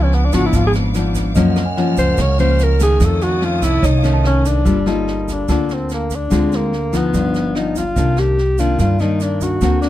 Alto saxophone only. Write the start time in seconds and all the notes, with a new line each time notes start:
0.03 C#4
0.15 B3
0.25 D4
0.34 F#4
0.46 E4
0.56 F4
0.67 G#4
1.99 C5
2.21 C#5
2.40 C5
2.64 A#4
2.83 G#4
3.05 A4
3.22 F#4
3.44 F4
3.63 E4
3.86 D#4
4.27 C#4
4.47 D4
4.88 D#4
5.32 D4
5.51 D4
5.74 C4
5.94 A#3
6.15 D4
6.56 A#3
6.96 B3
7.57 D#4
7.78 F4
8.19 G4
8.59 F4
8.80 F4
9.01 D#4
9.22 D4
9.42 F#4
9.82 D4